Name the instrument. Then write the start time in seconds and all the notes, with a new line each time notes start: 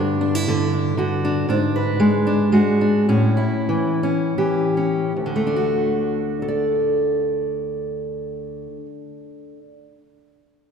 steel-string acoustic guitar
Already playing: G2 D3 D4
0.21 D4
0.35 E4
0.48 D3
0.73 D4
0.97 D3 F#4
1.25 D4
1.49 G#2 D4
1.76 B4
2.00 G#3
2.27 D4
2.52 G#3 F#4
2.81 D4
3.09 A2 C#4
3.37 E4
3.69 E3
4.03 C#4
4.38 E3 G4
4.77 C#4
5.17 D2
5.26 D3
5.36 A3
5.47 D4
5.56 F#4
6.42 A4
6.48 D5